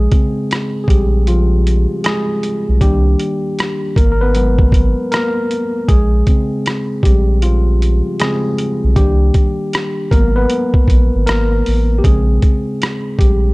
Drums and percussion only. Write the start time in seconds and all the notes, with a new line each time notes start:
0.12 kick, closed hi-hat
0.51 cross-stick, closed hi-hat
0.88 kick, closed hi-hat
1.27 closed hi-hat
1.67 closed hi-hat
2.04 cross-stick, closed hi-hat
2.43 closed hi-hat
2.81 kick, closed hi-hat
3.19 closed hi-hat
3.59 cross-stick, closed hi-hat
3.96 kick, closed hi-hat
4.35 closed hi-hat
4.58 kick
4.72 kick, closed hi-hat
5.12 cross-stick, closed hi-hat
5.51 closed hi-hat
5.89 kick, closed hi-hat
6.27 kick, closed hi-hat
6.66 cross-stick, closed hi-hat
7.03 kick, closed hi-hat
7.42 closed hi-hat
7.82 closed hi-hat
8.20 cross-stick, closed hi-hat
8.59 closed hi-hat
8.96 kick, closed hi-hat
9.34 kick, closed hi-hat
9.73 cross-stick, closed hi-hat
10.12 kick, closed hi-hat
10.50 closed hi-hat
10.74 kick
10.88 kick, closed hi-hat
11.27 cross-stick, closed hi-hat
11.66 open hi-hat
12.04 kick, closed hi-hat
12.42 kick, closed hi-hat
12.82 cross-stick, closed hi-hat
13.18 kick, closed hi-hat